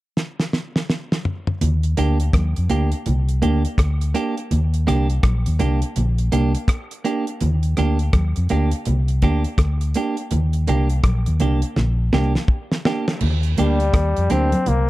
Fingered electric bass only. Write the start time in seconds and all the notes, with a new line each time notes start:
1.62 D#2
1.99 D2
2.34 D#2
2.58 F2
2.72 D2
3.07 C2
3.44 D2
3.79 D2
4.52 D#2
4.89 C2
5.24 A#1
5.47 D#2
5.61 C2
5.97 A#1
6.33 C2
7.42 D#2
7.79 D2
8.14 D#2
8.37 F2
8.51 D2
8.88 C2
9.23 D2
9.58 D2
10.33 D#2
10.69 C2
11.04 A#1
11.28 D#2
11.42 C2
11.78 A#1
12.14 C2
13.23 D#2
13.59 D2
13.94 D#2
14.18 F2
14.32 D2
14.68 C2